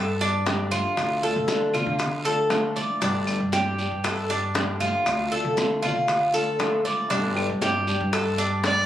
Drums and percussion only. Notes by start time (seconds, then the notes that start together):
0.20 high bongo, high conga
0.46 high bongo, low bongo, high conga, short guiro, maracas
0.71 high conga, short guiro, maracas
0.97 high bongo, high conga, long guiro, claves, maracas
1.22 high conga
1.48 high bongo, high conga, short guiro, maracas
1.73 high conga, low conga, short guiro, claves, maracas
1.99 high bongo, high conga, low conga, long guiro, maracas
2.25 high conga, maracas
2.50 high bongo, low bongo, high conga, short guiro, claves, maracas
2.76 high conga, short guiro, maracas
3.01 high bongo, high conga, long guiro, maracas
3.27 high bongo, claves, maracas
3.52 high bongo, high conga, short guiro, maracas
3.78 high bongo, high conga, short guiro, maracas
4.04 high bongo, high conga, long guiro, claves, maracas
4.30 high bongo, high conga
4.55 high bongo, low bongo, high conga, short guiro, maracas
4.81 high conga, short guiro, maracas
5.06 high bongo, high conga, long guiro, claves, maracas
5.32 high conga
5.57 high bongo, high conga, short guiro, maracas
5.83 high conga, low conga, short guiro, claves, maracas
6.08 high bongo, high conga, long guiro, maracas
6.34 high conga, maracas
6.59 high bongo, low bongo, high conga, short guiro, claves, maracas
6.85 high conga, short guiro, maracas
7.10 high bongo, high conga, long guiro, maracas
7.36 high bongo, high conga, claves
7.62 high bongo, high conga, short guiro, maracas
7.87 high bongo, high conga, short guiro, maracas
8.13 high bongo, high conga, long guiro, claves, maracas
8.38 high bongo, high conga, maracas
8.63 high bongo, low bongo, high conga, short guiro, maracas